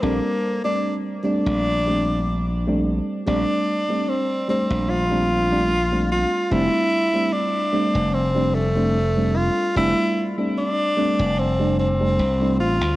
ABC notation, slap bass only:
X:1
M:4/4
L:1/16
Q:"Swing 16ths" 1/4=74
K:F
V:1 name="Slap bass" clef=bass
B,,, z6 B,,,8 z | B,,, z6 B,,,8 z | F,,, z6 F,,,8 z | F,,, z6 F,,,4- F,,, C,,2 A,,, D,, |]